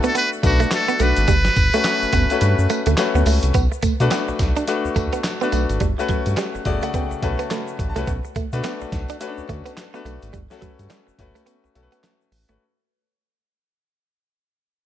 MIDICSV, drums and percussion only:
0, 0, Header, 1, 2, 480
1, 0, Start_track
1, 0, Key_signature, 2, "minor"
1, 0, Tempo, 566038
1, 1085, Time_signature, 4, 2, 24, 8
1, 12600, End_track
2, 0, Start_track
2, 0, Title_t, "Drums"
2, 29, Note_on_c, 9, 82, 58
2, 36, Note_on_c, 9, 42, 58
2, 114, Note_off_c, 9, 82, 0
2, 120, Note_off_c, 9, 42, 0
2, 130, Note_on_c, 9, 42, 74
2, 132, Note_on_c, 9, 82, 77
2, 215, Note_off_c, 9, 42, 0
2, 217, Note_off_c, 9, 82, 0
2, 278, Note_on_c, 9, 82, 54
2, 362, Note_off_c, 9, 82, 0
2, 367, Note_on_c, 9, 54, 68
2, 368, Note_on_c, 9, 36, 98
2, 369, Note_on_c, 9, 42, 76
2, 371, Note_on_c, 9, 82, 56
2, 452, Note_off_c, 9, 36, 0
2, 452, Note_off_c, 9, 54, 0
2, 453, Note_off_c, 9, 42, 0
2, 455, Note_off_c, 9, 82, 0
2, 508, Note_on_c, 9, 42, 59
2, 515, Note_on_c, 9, 82, 46
2, 592, Note_off_c, 9, 42, 0
2, 600, Note_off_c, 9, 82, 0
2, 604, Note_on_c, 9, 54, 95
2, 605, Note_on_c, 9, 38, 125
2, 605, Note_on_c, 9, 39, 102
2, 608, Note_on_c, 9, 42, 90
2, 608, Note_on_c, 9, 82, 69
2, 689, Note_off_c, 9, 54, 0
2, 690, Note_off_c, 9, 38, 0
2, 690, Note_off_c, 9, 39, 0
2, 692, Note_off_c, 9, 42, 0
2, 693, Note_off_c, 9, 82, 0
2, 749, Note_on_c, 9, 82, 54
2, 834, Note_off_c, 9, 82, 0
2, 842, Note_on_c, 9, 82, 53
2, 843, Note_on_c, 9, 54, 70
2, 846, Note_on_c, 9, 42, 76
2, 927, Note_off_c, 9, 82, 0
2, 928, Note_off_c, 9, 54, 0
2, 931, Note_off_c, 9, 42, 0
2, 986, Note_on_c, 9, 82, 57
2, 988, Note_on_c, 9, 42, 51
2, 1071, Note_off_c, 9, 82, 0
2, 1073, Note_off_c, 9, 42, 0
2, 1082, Note_on_c, 9, 42, 66
2, 1082, Note_on_c, 9, 54, 70
2, 1085, Note_on_c, 9, 82, 69
2, 1086, Note_on_c, 9, 36, 119
2, 1167, Note_off_c, 9, 42, 0
2, 1167, Note_off_c, 9, 54, 0
2, 1169, Note_off_c, 9, 82, 0
2, 1170, Note_off_c, 9, 36, 0
2, 1227, Note_on_c, 9, 38, 68
2, 1229, Note_on_c, 9, 82, 60
2, 1312, Note_off_c, 9, 38, 0
2, 1314, Note_off_c, 9, 82, 0
2, 1326, Note_on_c, 9, 42, 68
2, 1326, Note_on_c, 9, 82, 46
2, 1327, Note_on_c, 9, 54, 69
2, 1328, Note_on_c, 9, 36, 95
2, 1411, Note_off_c, 9, 42, 0
2, 1411, Note_off_c, 9, 82, 0
2, 1412, Note_off_c, 9, 54, 0
2, 1413, Note_off_c, 9, 36, 0
2, 1470, Note_on_c, 9, 82, 55
2, 1471, Note_on_c, 9, 42, 51
2, 1555, Note_off_c, 9, 82, 0
2, 1556, Note_off_c, 9, 42, 0
2, 1560, Note_on_c, 9, 42, 86
2, 1560, Note_on_c, 9, 54, 88
2, 1563, Note_on_c, 9, 38, 122
2, 1563, Note_on_c, 9, 39, 100
2, 1567, Note_on_c, 9, 82, 71
2, 1645, Note_off_c, 9, 42, 0
2, 1645, Note_off_c, 9, 54, 0
2, 1648, Note_off_c, 9, 38, 0
2, 1648, Note_off_c, 9, 39, 0
2, 1652, Note_off_c, 9, 82, 0
2, 1715, Note_on_c, 9, 82, 48
2, 1800, Note_off_c, 9, 82, 0
2, 1801, Note_on_c, 9, 54, 74
2, 1803, Note_on_c, 9, 42, 73
2, 1806, Note_on_c, 9, 36, 98
2, 1811, Note_on_c, 9, 82, 39
2, 1886, Note_off_c, 9, 54, 0
2, 1888, Note_off_c, 9, 42, 0
2, 1891, Note_off_c, 9, 36, 0
2, 1896, Note_off_c, 9, 82, 0
2, 1951, Note_on_c, 9, 42, 63
2, 1953, Note_on_c, 9, 82, 55
2, 2035, Note_off_c, 9, 42, 0
2, 2037, Note_off_c, 9, 82, 0
2, 2044, Note_on_c, 9, 42, 74
2, 2052, Note_on_c, 9, 82, 71
2, 2128, Note_off_c, 9, 42, 0
2, 2136, Note_off_c, 9, 82, 0
2, 2195, Note_on_c, 9, 82, 60
2, 2280, Note_off_c, 9, 82, 0
2, 2285, Note_on_c, 9, 54, 67
2, 2287, Note_on_c, 9, 42, 80
2, 2288, Note_on_c, 9, 82, 55
2, 2370, Note_off_c, 9, 54, 0
2, 2372, Note_off_c, 9, 42, 0
2, 2373, Note_off_c, 9, 82, 0
2, 2425, Note_on_c, 9, 42, 54
2, 2431, Note_on_c, 9, 82, 47
2, 2510, Note_off_c, 9, 42, 0
2, 2516, Note_off_c, 9, 82, 0
2, 2522, Note_on_c, 9, 38, 126
2, 2522, Note_on_c, 9, 39, 101
2, 2522, Note_on_c, 9, 54, 93
2, 2525, Note_on_c, 9, 42, 89
2, 2530, Note_on_c, 9, 82, 69
2, 2607, Note_off_c, 9, 38, 0
2, 2607, Note_off_c, 9, 39, 0
2, 2607, Note_off_c, 9, 54, 0
2, 2610, Note_off_c, 9, 42, 0
2, 2614, Note_off_c, 9, 82, 0
2, 2674, Note_on_c, 9, 82, 49
2, 2759, Note_off_c, 9, 82, 0
2, 2762, Note_on_c, 9, 54, 65
2, 2765, Note_on_c, 9, 46, 74
2, 2767, Note_on_c, 9, 82, 50
2, 2847, Note_off_c, 9, 54, 0
2, 2850, Note_off_c, 9, 46, 0
2, 2852, Note_off_c, 9, 82, 0
2, 2906, Note_on_c, 9, 42, 55
2, 2911, Note_on_c, 9, 82, 57
2, 2991, Note_off_c, 9, 42, 0
2, 2996, Note_off_c, 9, 82, 0
2, 3003, Note_on_c, 9, 42, 70
2, 3003, Note_on_c, 9, 54, 66
2, 3006, Note_on_c, 9, 36, 116
2, 3006, Note_on_c, 9, 82, 69
2, 3087, Note_off_c, 9, 42, 0
2, 3088, Note_off_c, 9, 54, 0
2, 3091, Note_off_c, 9, 36, 0
2, 3091, Note_off_c, 9, 82, 0
2, 3157, Note_on_c, 9, 82, 56
2, 3242, Note_off_c, 9, 82, 0
2, 3243, Note_on_c, 9, 42, 71
2, 3244, Note_on_c, 9, 54, 64
2, 3248, Note_on_c, 9, 36, 86
2, 3250, Note_on_c, 9, 82, 46
2, 3328, Note_off_c, 9, 42, 0
2, 3329, Note_off_c, 9, 54, 0
2, 3332, Note_off_c, 9, 36, 0
2, 3335, Note_off_c, 9, 82, 0
2, 3393, Note_on_c, 9, 42, 53
2, 3395, Note_on_c, 9, 82, 52
2, 3477, Note_off_c, 9, 42, 0
2, 3480, Note_off_c, 9, 82, 0
2, 3482, Note_on_c, 9, 54, 90
2, 3483, Note_on_c, 9, 42, 88
2, 3485, Note_on_c, 9, 38, 121
2, 3485, Note_on_c, 9, 39, 91
2, 3490, Note_on_c, 9, 82, 63
2, 3567, Note_off_c, 9, 42, 0
2, 3567, Note_off_c, 9, 54, 0
2, 3570, Note_off_c, 9, 38, 0
2, 3570, Note_off_c, 9, 39, 0
2, 3574, Note_off_c, 9, 82, 0
2, 3630, Note_on_c, 9, 82, 43
2, 3715, Note_off_c, 9, 82, 0
2, 3723, Note_on_c, 9, 54, 68
2, 3725, Note_on_c, 9, 42, 73
2, 3726, Note_on_c, 9, 36, 98
2, 3726, Note_on_c, 9, 38, 76
2, 3729, Note_on_c, 9, 82, 41
2, 3808, Note_off_c, 9, 54, 0
2, 3810, Note_off_c, 9, 42, 0
2, 3811, Note_off_c, 9, 36, 0
2, 3811, Note_off_c, 9, 38, 0
2, 3814, Note_off_c, 9, 82, 0
2, 3869, Note_on_c, 9, 82, 51
2, 3871, Note_on_c, 9, 42, 62
2, 3954, Note_off_c, 9, 82, 0
2, 3956, Note_off_c, 9, 42, 0
2, 3964, Note_on_c, 9, 42, 76
2, 3966, Note_on_c, 9, 82, 71
2, 4049, Note_off_c, 9, 42, 0
2, 4050, Note_off_c, 9, 82, 0
2, 4113, Note_on_c, 9, 82, 61
2, 4198, Note_off_c, 9, 82, 0
2, 4205, Note_on_c, 9, 54, 70
2, 4206, Note_on_c, 9, 36, 100
2, 4207, Note_on_c, 9, 42, 74
2, 4290, Note_off_c, 9, 54, 0
2, 4291, Note_off_c, 9, 36, 0
2, 4292, Note_off_c, 9, 42, 0
2, 4346, Note_on_c, 9, 42, 57
2, 4351, Note_on_c, 9, 82, 45
2, 4431, Note_off_c, 9, 42, 0
2, 4436, Note_off_c, 9, 82, 0
2, 4444, Note_on_c, 9, 38, 121
2, 4444, Note_on_c, 9, 39, 96
2, 4444, Note_on_c, 9, 54, 93
2, 4447, Note_on_c, 9, 42, 88
2, 4449, Note_on_c, 9, 82, 70
2, 4528, Note_off_c, 9, 54, 0
2, 4529, Note_off_c, 9, 38, 0
2, 4529, Note_off_c, 9, 39, 0
2, 4532, Note_off_c, 9, 42, 0
2, 4534, Note_off_c, 9, 82, 0
2, 4596, Note_on_c, 9, 82, 48
2, 4681, Note_off_c, 9, 82, 0
2, 4681, Note_on_c, 9, 54, 65
2, 4685, Note_on_c, 9, 42, 74
2, 4687, Note_on_c, 9, 82, 49
2, 4766, Note_off_c, 9, 54, 0
2, 4770, Note_off_c, 9, 42, 0
2, 4772, Note_off_c, 9, 82, 0
2, 4829, Note_on_c, 9, 42, 51
2, 4833, Note_on_c, 9, 82, 55
2, 4913, Note_off_c, 9, 42, 0
2, 4918, Note_off_c, 9, 82, 0
2, 4920, Note_on_c, 9, 42, 66
2, 4924, Note_on_c, 9, 36, 122
2, 4932, Note_on_c, 9, 82, 68
2, 5005, Note_off_c, 9, 42, 0
2, 5009, Note_off_c, 9, 36, 0
2, 5017, Note_off_c, 9, 82, 0
2, 5082, Note_on_c, 9, 82, 55
2, 5160, Note_on_c, 9, 42, 68
2, 5165, Note_on_c, 9, 36, 92
2, 5167, Note_off_c, 9, 82, 0
2, 5174, Note_on_c, 9, 82, 45
2, 5245, Note_off_c, 9, 42, 0
2, 5250, Note_off_c, 9, 36, 0
2, 5258, Note_off_c, 9, 82, 0
2, 5308, Note_on_c, 9, 42, 51
2, 5321, Note_on_c, 9, 82, 50
2, 5393, Note_off_c, 9, 42, 0
2, 5398, Note_on_c, 9, 42, 80
2, 5401, Note_on_c, 9, 38, 122
2, 5401, Note_on_c, 9, 39, 103
2, 5406, Note_off_c, 9, 82, 0
2, 5411, Note_on_c, 9, 82, 67
2, 5483, Note_off_c, 9, 42, 0
2, 5486, Note_off_c, 9, 38, 0
2, 5486, Note_off_c, 9, 39, 0
2, 5496, Note_off_c, 9, 82, 0
2, 5554, Note_on_c, 9, 82, 47
2, 5639, Note_off_c, 9, 82, 0
2, 5641, Note_on_c, 9, 42, 74
2, 5644, Note_on_c, 9, 36, 95
2, 5648, Note_on_c, 9, 82, 40
2, 5726, Note_off_c, 9, 42, 0
2, 5729, Note_off_c, 9, 36, 0
2, 5733, Note_off_c, 9, 82, 0
2, 5784, Note_on_c, 9, 82, 56
2, 5790, Note_on_c, 9, 42, 61
2, 5869, Note_off_c, 9, 82, 0
2, 5875, Note_off_c, 9, 42, 0
2, 5884, Note_on_c, 9, 42, 71
2, 5885, Note_on_c, 9, 36, 97
2, 5885, Note_on_c, 9, 82, 74
2, 5969, Note_off_c, 9, 42, 0
2, 5970, Note_off_c, 9, 36, 0
2, 5970, Note_off_c, 9, 82, 0
2, 6032, Note_on_c, 9, 82, 54
2, 6117, Note_off_c, 9, 82, 0
2, 6127, Note_on_c, 9, 36, 94
2, 6128, Note_on_c, 9, 42, 75
2, 6212, Note_off_c, 9, 36, 0
2, 6213, Note_off_c, 9, 42, 0
2, 6268, Note_on_c, 9, 42, 56
2, 6271, Note_on_c, 9, 82, 46
2, 6352, Note_off_c, 9, 42, 0
2, 6356, Note_off_c, 9, 82, 0
2, 6364, Note_on_c, 9, 82, 64
2, 6366, Note_on_c, 9, 38, 117
2, 6366, Note_on_c, 9, 39, 97
2, 6369, Note_on_c, 9, 42, 85
2, 6448, Note_off_c, 9, 82, 0
2, 6451, Note_off_c, 9, 38, 0
2, 6451, Note_off_c, 9, 39, 0
2, 6454, Note_off_c, 9, 42, 0
2, 6509, Note_on_c, 9, 82, 53
2, 6594, Note_off_c, 9, 82, 0
2, 6606, Note_on_c, 9, 36, 102
2, 6606, Note_on_c, 9, 82, 51
2, 6610, Note_on_c, 9, 42, 74
2, 6691, Note_off_c, 9, 36, 0
2, 6691, Note_off_c, 9, 82, 0
2, 6695, Note_off_c, 9, 42, 0
2, 6749, Note_on_c, 9, 82, 50
2, 6751, Note_on_c, 9, 42, 52
2, 6834, Note_off_c, 9, 82, 0
2, 6836, Note_off_c, 9, 42, 0
2, 6846, Note_on_c, 9, 82, 72
2, 6847, Note_on_c, 9, 36, 112
2, 6848, Note_on_c, 9, 42, 67
2, 6930, Note_off_c, 9, 82, 0
2, 6932, Note_off_c, 9, 36, 0
2, 6932, Note_off_c, 9, 42, 0
2, 6991, Note_on_c, 9, 82, 59
2, 7076, Note_off_c, 9, 82, 0
2, 7083, Note_on_c, 9, 82, 41
2, 7088, Note_on_c, 9, 36, 91
2, 7088, Note_on_c, 9, 42, 70
2, 7168, Note_off_c, 9, 82, 0
2, 7173, Note_off_c, 9, 36, 0
2, 7173, Note_off_c, 9, 42, 0
2, 7229, Note_on_c, 9, 82, 52
2, 7234, Note_on_c, 9, 42, 52
2, 7314, Note_off_c, 9, 82, 0
2, 7319, Note_off_c, 9, 42, 0
2, 7323, Note_on_c, 9, 82, 60
2, 7325, Note_on_c, 9, 42, 78
2, 7328, Note_on_c, 9, 38, 117
2, 7328, Note_on_c, 9, 39, 103
2, 7408, Note_off_c, 9, 82, 0
2, 7410, Note_off_c, 9, 42, 0
2, 7413, Note_off_c, 9, 38, 0
2, 7413, Note_off_c, 9, 39, 0
2, 7470, Note_on_c, 9, 82, 47
2, 7554, Note_off_c, 9, 82, 0
2, 7565, Note_on_c, 9, 82, 39
2, 7567, Note_on_c, 9, 36, 92
2, 7568, Note_on_c, 9, 42, 71
2, 7569, Note_on_c, 9, 38, 69
2, 7650, Note_off_c, 9, 82, 0
2, 7652, Note_off_c, 9, 36, 0
2, 7653, Note_off_c, 9, 42, 0
2, 7654, Note_off_c, 9, 38, 0
2, 7707, Note_on_c, 9, 82, 56
2, 7715, Note_on_c, 9, 42, 56
2, 7792, Note_off_c, 9, 82, 0
2, 7799, Note_off_c, 9, 42, 0
2, 7808, Note_on_c, 9, 42, 75
2, 7809, Note_on_c, 9, 82, 73
2, 7893, Note_off_c, 9, 42, 0
2, 7893, Note_off_c, 9, 82, 0
2, 7950, Note_on_c, 9, 82, 59
2, 8035, Note_off_c, 9, 82, 0
2, 8048, Note_on_c, 9, 36, 95
2, 8051, Note_on_c, 9, 42, 74
2, 8133, Note_off_c, 9, 36, 0
2, 8135, Note_off_c, 9, 42, 0
2, 8192, Note_on_c, 9, 42, 58
2, 8193, Note_on_c, 9, 82, 43
2, 8276, Note_off_c, 9, 42, 0
2, 8277, Note_off_c, 9, 82, 0
2, 8288, Note_on_c, 9, 38, 126
2, 8288, Note_on_c, 9, 39, 89
2, 8290, Note_on_c, 9, 82, 67
2, 8291, Note_on_c, 9, 42, 86
2, 8372, Note_off_c, 9, 38, 0
2, 8373, Note_off_c, 9, 39, 0
2, 8375, Note_off_c, 9, 42, 0
2, 8375, Note_off_c, 9, 82, 0
2, 8432, Note_on_c, 9, 82, 52
2, 8516, Note_off_c, 9, 82, 0
2, 8525, Note_on_c, 9, 82, 52
2, 8531, Note_on_c, 9, 42, 70
2, 8609, Note_off_c, 9, 82, 0
2, 8616, Note_off_c, 9, 42, 0
2, 8667, Note_on_c, 9, 82, 52
2, 8671, Note_on_c, 9, 42, 53
2, 8752, Note_off_c, 9, 82, 0
2, 8756, Note_off_c, 9, 42, 0
2, 8764, Note_on_c, 9, 82, 69
2, 8766, Note_on_c, 9, 36, 118
2, 8766, Note_on_c, 9, 42, 68
2, 8848, Note_off_c, 9, 82, 0
2, 8851, Note_off_c, 9, 36, 0
2, 8851, Note_off_c, 9, 42, 0
2, 8909, Note_on_c, 9, 82, 59
2, 8913, Note_on_c, 9, 38, 72
2, 8994, Note_off_c, 9, 82, 0
2, 8998, Note_off_c, 9, 38, 0
2, 9006, Note_on_c, 9, 42, 70
2, 9007, Note_on_c, 9, 36, 96
2, 9007, Note_on_c, 9, 82, 43
2, 9091, Note_off_c, 9, 42, 0
2, 9092, Note_off_c, 9, 36, 0
2, 9092, Note_off_c, 9, 82, 0
2, 9151, Note_on_c, 9, 82, 48
2, 9152, Note_on_c, 9, 42, 55
2, 9235, Note_off_c, 9, 82, 0
2, 9237, Note_off_c, 9, 42, 0
2, 9243, Note_on_c, 9, 42, 82
2, 9246, Note_on_c, 9, 38, 124
2, 9246, Note_on_c, 9, 39, 91
2, 9248, Note_on_c, 9, 82, 62
2, 9328, Note_off_c, 9, 42, 0
2, 9330, Note_off_c, 9, 38, 0
2, 9330, Note_off_c, 9, 39, 0
2, 9332, Note_off_c, 9, 82, 0
2, 9398, Note_on_c, 9, 82, 46
2, 9483, Note_off_c, 9, 82, 0
2, 9486, Note_on_c, 9, 36, 92
2, 9488, Note_on_c, 9, 42, 77
2, 9492, Note_on_c, 9, 82, 41
2, 9571, Note_off_c, 9, 36, 0
2, 9572, Note_off_c, 9, 42, 0
2, 9576, Note_off_c, 9, 82, 0
2, 9631, Note_on_c, 9, 42, 60
2, 9632, Note_on_c, 9, 82, 57
2, 9716, Note_off_c, 9, 42, 0
2, 9717, Note_off_c, 9, 82, 0
2, 9724, Note_on_c, 9, 42, 67
2, 9727, Note_on_c, 9, 82, 67
2, 9809, Note_off_c, 9, 42, 0
2, 9812, Note_off_c, 9, 82, 0
2, 9877, Note_on_c, 9, 82, 54
2, 9962, Note_off_c, 9, 82, 0
2, 9968, Note_on_c, 9, 42, 73
2, 10052, Note_off_c, 9, 42, 0
2, 10109, Note_on_c, 9, 42, 56
2, 10118, Note_on_c, 9, 82, 41
2, 10194, Note_off_c, 9, 42, 0
2, 10202, Note_off_c, 9, 82, 0
2, 10207, Note_on_c, 9, 38, 127
2, 10207, Note_on_c, 9, 39, 93
2, 10209, Note_on_c, 9, 42, 84
2, 10212, Note_on_c, 9, 82, 67
2, 10291, Note_off_c, 9, 38, 0
2, 10291, Note_off_c, 9, 39, 0
2, 10294, Note_off_c, 9, 42, 0
2, 10297, Note_off_c, 9, 82, 0
2, 10357, Note_on_c, 9, 82, 51
2, 10442, Note_off_c, 9, 82, 0
2, 10449, Note_on_c, 9, 46, 76
2, 10450, Note_on_c, 9, 82, 49
2, 10533, Note_off_c, 9, 46, 0
2, 10535, Note_off_c, 9, 82, 0
2, 10589, Note_on_c, 9, 42, 56
2, 10590, Note_on_c, 9, 82, 57
2, 10673, Note_off_c, 9, 42, 0
2, 10675, Note_off_c, 9, 82, 0
2, 12600, End_track
0, 0, End_of_file